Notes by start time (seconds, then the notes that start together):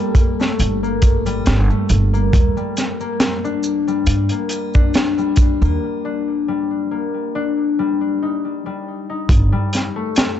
Already playing: G3 A#3 A4
0.15 kick, closed hi-hat, maracas
0.40 A3, snare, maracas
0.59 G1, closed hi-hat, maracas
0.83 A#3, maracas
1.02 kick, closed hi-hat, maracas
1.26 G3, closed hi-hat, triangle, maracas
1.46 G1, snare, closed hi-hat, maracas
1.70 A3, maracas
1.89 G1, closed hi-hat, maracas
2.13 A#3, maracas
2.33 D#2, kick, closed hi-hat, maracas
2.57 G3, maracas
2.77 snare, closed hi-hat, maracas
3.00 A#3, maracas
3.20 snare, closed hi-hat, maracas
3.44 D4, maracas
3.63 maracas
3.88 G3, maracas
4.07 G2, closed hi-hat, maracas
4.29 A#3, closed hi-hat, maracas
4.49 closed hi-hat, triangle, maracas
4.74 D4, kick, maracas
4.94 snare, closed hi-hat, maracas
5.18 G3, maracas
5.36 kick, closed hi-hat, maracas
5.62 D#2 A#3, triangle, maracas
6.05 D4
6.48 G3
6.91 A#3
7.35 D4
7.79 G3
8.22 D#4
8.66 G3
9.10 D#4
9.27 G1 G3 G4, kick, closed hi-hat
9.52 G3
9.73 snare, closed hi-hat
9.96 A3
10.16 snare, closed hi-hat, maracas